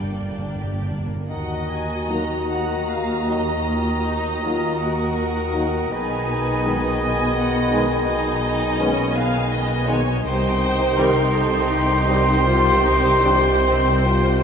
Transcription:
Already playing: G1 G2 G3 A#3 D4 D5 G5
0.03 G2
0.12 G2
0.18 G2 A#3
0.30 G2
0.38 G2 D4
0.47 G2
0.56 G2
0.63 G2 G4
0.73 G2
0.82 G2
0.87 G2 D4
0.99 G2
1.07 G2 A#3
1.16 G2
1.28 D#2 D#3 F#4 D#5 F#5 A#5
1.71 G#5
2.08 D#3 F#3 A#3 D#4 A#5
2.50 F#5 A#5
2.90 F5
3.26 D#3 F#3 A#3 D#4 D#5
3.67 F4
4.04 D#4
4.42 D#3 F#3 A#3 D#4 F4
4.80 F#4 A#4 F#5
5.54 D#3 F#3 A#3 D#4
5.92 B1 B2 D#3 D#4 G#4 B4 D#5 G#5 B5
6.65 D#3 G#3 B3 D#4
7.02 B3 D#5 G#5
7.38 F#5
7.71 D#3 G#3 B3 D#4 G#5
8.07 D#4 D#5 G#5
8.45 D#4
8.78 D#3 G#3 B3 C#4 D#4
9.15 B3 F5
9.51 D#5
9.87 D#3 G#3 B3 D#4 C#5
10.24 C2 C3 D#3 D#4 G4 C5 G5 C6
10.60 C5
10.97 D#3 G3 C4 G4 A#4
11.34 A4 G5
11.72 G4
12.09 D#3 G3 C4 G4 C5
12.47 F4
12.84 D#4
13.22 D#3 G3 C4 D4 G4
13.64 C4
14.05 F4

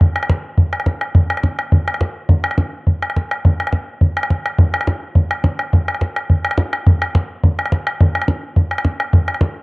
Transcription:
0.01 bodhran
0.16 bodhran
0.23 bodhran
0.29 bodhran
0.58 bodhran
0.73 bodhran
0.80 bodhran
0.86 bodhran
1.01 bodhran
1.15 bodhran
1.30 bodhran
1.37 bodhran
1.43 bodhran
1.59 bodhran
1.72 bodhran
1.88 bodhran
1.94 bodhran
2.01 bodhran
2.29 bodhran
2.44 bodhran
2.51 bodhran
2.58 bodhran
2.87 bodhran
3.02 bodhran
3.10 bodhran
3.16 bodhran
3.31 bodhran
3.45 bodhran
3.60 bodhran
3.67 bodhran
3.72 bodhran
4.01 bodhran
4.17 bodhran
4.23 bodhran
4.30 bodhran
4.46 bodhran
4.58 bodhran
4.74 bodhran
4.81 bodhran
4.87 bodhran
5.15 bodhran
5.31 bodhran
5.44 bodhran
5.59 bodhran
5.73 bodhran
5.88 bodhran
5.95 bodhran
6.01 bodhran
6.16 bodhran
6.30 bodhran
6.45 bodhran
6.51 bodhran
6.58 bodhran
6.73 bodhran
6.87 bodhran
7.02 bodhran
7.15 bodhran
7.43 bodhran
7.59 bodhran
7.66 bodhran
7.72 bodhran
7.87 bodhran
8.01 bodhran
8.15 bodhran
8.22 bodhran
8.28 bodhran
8.56 bodhran
8.71 bodhran
8.78 bodhran
8.85 bodhran
9.00 bodhran
9.13 bodhran
9.28 bodhran
9.34 bodhran
9.41 bodhran

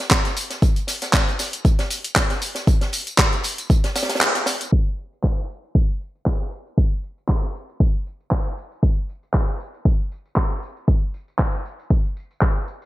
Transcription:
0.00 snare, tambourine
0.11 kick, snare, clap, closed hi-hat, tambourine
0.25 snare, closed hi-hat, tambourine
0.37 closed hi-hat, open hi-hat, tambourine
0.50 snare, closed hi-hat, tambourine
0.62 kick, closed hi-hat, tambourine
0.76 closed hi-hat, tambourine
0.87 snare, closed hi-hat, open hi-hat, tambourine
1.02 snare, closed hi-hat, tambourine
1.13 kick, snare, clap, closed hi-hat, tambourine
1.28 tambourine
1.39 snare, closed hi-hat, open hi-hat, tambourine
1.53 closed hi-hat, tambourine
1.65 kick, closed hi-hat, tambourine
1.79 snare, closed hi-hat, tambourine
1.91 closed hi-hat, open hi-hat, tambourine
2.04 closed hi-hat, tambourine
2.15 kick, snare, clap, closed hi-hat, tambourine
2.30 snare, closed hi-hat, tambourine
2.42 closed hi-hat, open hi-hat, tambourine
2.55 snare, closed hi-hat, tambourine
2.67 kick, closed hi-hat, tambourine
2.81 snare, closed hi-hat, tambourine
2.93 closed hi-hat, open hi-hat, tambourine
3.07 closed hi-hat, tambourine
3.18 kick, snare, clap, tambourine
3.33 closed hi-hat, tambourine
3.43 closed hi-hat, open hi-hat, tambourine
3.58 closed hi-hat, tambourine
3.70 kick, closed hi-hat, tambourine
3.84 snare, closed hi-hat, tambourine
3.96 snare, closed hi-hat, open hi-hat, tambourine
4.03 snare, closed hi-hat
4.09 snare, closed hi-hat, tambourine
4.15 snare, closed hi-hat
4.21 snare, clap, closed hi-hat, tambourine
4.35 snare, closed hi-hat, tambourine
4.46 snare, closed hi-hat, open hi-hat, tambourine
4.61 closed hi-hat, tambourine
4.72 kick
4.99 tambourine
5.13 tambourine
5.24 kick, clap
5.50 tambourine
5.64 tambourine
5.75 kick, tambourine
5.90 tambourine
6.01 tambourine
6.15 tambourine
6.26 kick, clap, tambourine
6.53 tambourine
6.67 tambourine
6.78 kick, tambourine
6.92 tambourine
7.04 tambourine
7.18 tambourine
7.29 kick, clap, tambourine
7.44 tambourine
7.55 tambourine
7.69 tambourine
7.80 kick, tambourine
7.95 tambourine
8.06 tambourine
8.20 tambourine
8.31 kick, clap, tambourine
8.46 tambourine
8.58 tambourine
8.72 tambourine
8.83 kick, tambourine
8.97 tambourine
9.09 tambourine
9.23 tambourine
9.34 kick, clap, tambourine
9.49 tambourine
9.60 tambourine
9.74 tambourine
9.85 kick, tambourine
10.00 tambourine
10.12 tambourine
10.26 tambourine
10.36 kick, clap, tambourine
10.51 tambourine
10.63 tambourine
10.77 tambourine
10.88 kick, tambourine
11.02 tambourine
11.14 tambourine
11.28 tambourine
11.39 kick, clap
11.54 tambourine
11.65 tambourine
11.79 tambourine
11.90 kick, tambourine
12.05 tambourine
12.17 tambourine
12.31 tambourine
12.41 kick, clap, tambourine
12.56 tambourine
12.68 tambourine
12.82 tambourine

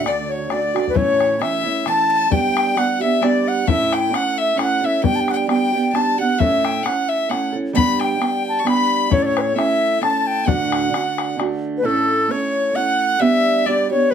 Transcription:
Already playing: D2
0.04 D3 A3 D4 F#4 D5, bodhran
0.29 C#5
0.49 D3 A3 D4 F#4 D5, bodhran
0.74 D3 A3 D4 F#4, bodhran
0.87 B4, bodhran
0.94 A2 E3 A3 C#4 E4 C#5, bodhran
1.20 bodhran
1.39 E3 A3 C#4 E4 E5, bodhran
1.63 A3 C#4 E4
1.86 E3 A3 C#4 E4 A5, bodhran
2.12 A5
2.30 G3 B3 D4 G4 G5, bodhran
2.57 bodhran
2.76 G3 B3 D4 G4 F#5, bodhran
3.00 B3 D4 G4 E5
3.21 G3 B3 D4 G4 D5, bodhran
3.47 F#5
3.66 A2 A3 C#4 E4 A4 E5, bodhran
3.92 G5, bodhran
4.11 A3 C#4 E4, bodhran
4.15 A4 F#5
4.38 E5
4.55 A3 C#4 E4 A4 F#5, bodhran
4.62 F#5
4.80 C#4 E4 A4 E5
4.86 E5
5.03 G3 B3 D4 G4 G5, bodhran
5.15 A5
5.20 G5
5.28 F#5, bodhran
5.33 G5
5.47 G3 B3 D4 G4 G5, bodhran
5.72 B3 D4 G4
5.93 G3 B3 D4 G4 A5, bodhran
6.18 B3 D4 G4 F#5
6.38 A2 A3 C#4 E4 A4 E5, bodhran
6.65 G5, bodhran
6.83 A3 C#4 E4 A4 F#5, bodhran
7.09 E5
7.29 A3 C#4 E4 A4 F#5, bodhran
7.52 C#4 E4 A4
7.73 G3 B3 D4 G4 B5, bodhran
7.78 B5
8.00 G5, bodhran
8.17 G3 B3 D4 G4
8.22 bodhran
8.49 A5
8.59 C#6
8.63 G3 B3 D4 G4 B5, bodhran
8.69 B5
9.10 A2 A3 C#4 E4 A4 C#5, bodhran
9.22 C#5 D5
9.37 B4 C#5, bodhran
9.55 A3 C#4 E4 A4 E5, bodhran
10.01 A3 C#4 E4 A4 A5, bodhran
10.27 G5
10.46 D2 A2 D3 A3 D4 F#4 F#5, bodhran
10.72 bodhran
10.91 D3 A3 D4 F#4, bodhran
11.18 bodhran
11.37 D3 A3 D4 F#4, bodhran
11.77 B4
11.83 A2 A3 C#4 E4 A4
12.30 A3 C#4 E4 A4 C#5
12.73 A3 C#4 E4 F#5
12.77 A4
13.19 G3 B3 D4 G4 E5
13.65 G3 B3 D4 G4 D5
13.90 B3 D4 G4 C#5
14.10 G3 B4

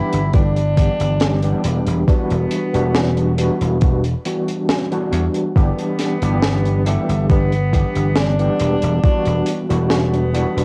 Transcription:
Already playing: E3 G3 B3 D4 E4 G4
0.13 G1, closed hi-hat
0.33 E3 G3 B3 D4 G4, kick, closed hi-hat
0.56 closed hi-hat
0.77 E3 G3 B3 D4 G4, kick, closed hi-hat
1.00 G1, closed hi-hat
1.20 snare, closed hi-hat
1.43 E3 G3 B3 D4 G4, closed hi-hat
1.64 E1, closed hi-hat
1.87 E1, closed hi-hat
2.07 E3 G3 B3 D4 F#4, muted slap bass stroke, kick, closed hi-hat
2.30 E1, closed hi-hat
2.51 closed hi-hat
2.73 E1 E3 G3 B3 D4 F#4, closed hi-hat
2.95 snare, closed hi-hat
3.17 closed hi-hat
3.38 E3 G3 B3 D4 F#4, closed hi-hat
3.61 E1, closed hi-hat
3.81 E3 G3 B3 D4 F#4, kick, closed hi-hat
4.04 closed hi-hat
4.25 E3 G3 B3 D4 F#4, closed hi-hat
4.48 closed hi-hat
4.69 snare, closed hi-hat
4.91 E3 G3 B3 D4 F#4, closed hi-hat
5.12 E2, closed hi-hat
5.34 closed hi-hat
5.55 G1 E3 G3 B3 D4 G4, kick, closed hi-hat
5.78 closed hi-hat
5.99 snare, closed hi-hat
6.22 G1 E3 G3 B3 D4 G4, closed hi-hat
6.42 snare, closed hi-hat
6.65 closed hi-hat
6.86 E3 G3 A3 B3 D4 G4, closed hi-hat
7.09 G1, closed hi-hat
7.29 E3 G3 B3 D4 G4, kick, closed hi-hat
7.52 closed hi-hat
7.73 E3 G3 B3 D4 G4, kick, closed hi-hat
7.95 G1, closed hi-hat
8.16 D4, snare, closed hi-hat
8.39 E3 G3 B3 D4 G4, closed hi-hat
8.60 E1, closed hi-hat
8.82 E1, closed hi-hat
9.03 E3 G3 B3 D4 F#4, muted slap bass stroke, kick, closed hi-hat
9.25 E1, closed hi-hat
9.46 closed hi-hat
9.69 E1 E3 G3 B3 D4 F#4, closed hi-hat
9.90 B3, snare, closed hi-hat
10.14 closed hi-hat
10.33 E3 G3 B3 D4 F#4, closed hi-hat
10.57 E1, closed hi-hat

